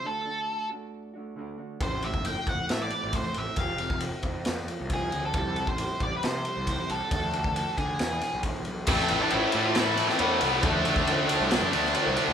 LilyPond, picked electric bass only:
\new Staff \with { instrumentName = "Picked electric bass" } { \clef bass \time 4/4 \key d \mixolydian \tempo 4 = 136 r1 | a,,8. fis,,8 r16 fis,,16 r16 a,8 r16 a,,8 r16 a,,16 r16 | f,,8. f,,8 r16 f,8 f,8 r16 c,8. d,8 | c,8. a,,8 r16 a,,16 r16 c8 r16 c,8 r16 c,16 r16 |
d,8. d,8 r16 d8 e,8 r16 b,,8. b,,8 | \key a \minor a,,16 r16 a,,16 r16 a,,16 r16 a,8. a,8 r16 e,8 c,8 | d,8 d,4~ d,16 c,8 fis,16 d,8 r16 c,16 r16 d,16 | }